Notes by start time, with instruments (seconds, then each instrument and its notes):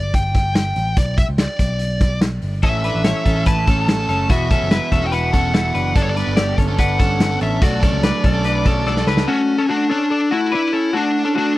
Already playing: picked electric bass G1, lead electric guitar D5
0.14 lead electric guitar G5, kick, closed hi-hat
0.34 kick, snare, closed hi-hat
0.55 lead electric guitar G5, snare, closed hi-hat
0.76 picked electric bass A1, closed hi-hat
0.97 picked electric bass B1, lead electric guitar D5, kick, closed hi-hat
1.18 lead electric guitar E5, kick, closed hi-hat
1.29 picked electric bass C#2
1.38 lead electric guitar D5, snare, closed hi-hat
1.59 picked electric bass B1, kick, closed hi-hat
1.79 closed hi-hat
2.00 kick, snare, closed hi-hat
2.21 snare, closed hi-hat
2.42 picked electric bass G1, open hi-hat
2.62 picked electric bass A1, overdriven electric guitar A2 E3 A3 C#4 A4, clean electric guitar C#4 A4, lead electric guitar E5, kick, closed hi-hat
2.84 overdriven electric guitar E3 A3 C#4 A4, clean electric guitar D4 B4, closed hi-hat
2.95 picked electric bass A1
3.04 clean electric guitar E4 C#5, snare, closed hi-hat
3.26 picked electric bass A1, clean electric guitar C#4 A4, kick, closed hi-hat
3.36 overdriven electric guitar A3 C#4 A4
3.46 clean electric guitar E4 B4, lead electric guitar A5, kick, closed hi-hat
3.67 overdriven electric guitar E3 A3 C#4 A4, clean electric guitar C#4 A4, kick, closed hi-hat
3.88 lead electric guitar A5, snare, closed hi-hat
3.99 overdriven electric guitar A3 C#4 A4
4.09 picked electric bass F#1, clean electric guitar C#4 A4, closed hi-hat
4.30 picked electric bass E1, overdriven electric guitar E2 B2 E3 B3 E4 F#4, clean electric guitar B3 F#4, lead electric guitar E5, kick, closed hi-hat
4.50 overdriven electric guitar E3 B3 E4 F#4, clean electric guitar C#4 A4, kick, closed hi-hat
4.62 picked electric bass F#1
4.71 clean electric guitar E4 B4, snare, closed hi-hat
4.92 picked electric bass E1, clean electric guitar C#4 A4, kick, closed hi-hat
5.02 overdriven electric guitar E3 B3 E4 F#4
5.07 lead electric guitar G5
5.12 clean electric guitar E4 B4, lead electric guitar F#5, closed hi-hat
5.33 overdriven electric guitar E3 B3 E4 F#4, clean electric guitar C#4 A4, kick, snare, closed hi-hat
5.54 clean electric guitar E4 A4, lead electric guitar F#5, snare, closed hi-hat
5.63 overdriven electric guitar E3 B3 E4 F#4
5.74 picked electric bass F#1, clean electric guitar D4 B4, closed hi-hat
5.95 picked electric bass G1, overdriven electric guitar G3 B3 D4 A4, clean electric guitar D4 A4, lead electric guitar D5, kick, closed hi-hat
6.03 lead electric guitar C#5
6.10 lead electric guitar D5
6.16 overdriven electric guitar G3 B3 D4 A4, clean electric guitar D4 B4, closed hi-hat
6.27 picked electric bass G1
6.37 clean electric guitar G4 D5, snare, closed hi-hat
6.58 picked electric bass G1, clean electric guitar C#4 A4, kick, closed hi-hat
6.67 overdriven electric guitar B3 D4 A4
6.78 clean electric guitar D4 B4, lead electric guitar F#5, kick, closed hi-hat
6.98 overdriven electric guitar G3 B3 D4 A4, clean electric guitar C#4 A4, kick, closed hi-hat
7.20 snare, closed hi-hat
7.31 overdriven electric guitar B3 D4 A4
7.41 picked electric bass A1, clean electric guitar C#4 A4, lead electric guitar E5, closed hi-hat
7.62 picked electric bass B1, overdriven electric guitar B2 F#3 A3 D4 A4, clean electric guitar A3 F#4, lead electric guitar D5, kick, closed hi-hat
7.82 overdriven electric guitar F#3 A3 D4 A4, clean electric guitar C#4 A4, kick, closed hi-hat
7.93 picked electric bass C#2
8.03 clean electric guitar D4 B4, snare, closed hi-hat
8.24 picked electric bass B1, clean electric guitar C#4 A4, kick, closed hi-hat
8.33 overdriven electric guitar A3 D4 A4
8.44 clean electric guitar D4 B4, closed hi-hat
8.64 overdriven electric guitar F#3 A3 D4 A4, clean electric guitar C#4 A4, kick, closed hi-hat
8.86 clean electric guitar D4 A4, snare
8.96 overdriven electric guitar A3 D4 A4, snare
9.07 picked electric bass C#2, clean electric guitar D4 B4, snare
9.17 snare
9.28 clean electric guitar A3 F#4, lead electric guitar C#4
9.58 clean electric guitar C#4 A4
9.69 clean electric guitar A3 F#4, lead electric guitar D4
9.90 clean electric guitar C#4 A4, lead electric guitar D4
10.10 clean electric guitar D4 A4
10.31 clean electric guitar A3 F#4, lead electric guitar E4
10.52 clean electric guitar D4 B4, lead electric guitar E4
10.73 clean electric guitar C#4 A4
10.93 clean electric guitar A3 F#4, lead electric guitar D4
11.25 clean electric guitar C#4 A4
11.35 clean electric guitar A3 F#4, lead electric guitar D4